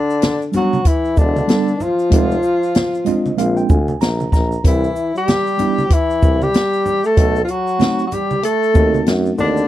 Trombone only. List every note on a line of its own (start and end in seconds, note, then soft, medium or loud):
0.00 0.51 D3 medium
0.56 0.88 F#3 medium
0.86 1.19 E3 medium
1.18 1.82 D3 medium
1.80 3.70 F3 medium
4.65 5.12 E3 medium
5.15 5.92 G3 medium
5.91 6.42 E3 medium
6.41 7.05 G3 medium
7.04 7.41 A3 medium
7.42 7.50 F3 medium
7.48 8.05 F#3 medium
8.05 8.13 F#3 medium
8.11 8.42 G3 medium
8.43 9.08 A3 medium
9.38 9.68 D3 medium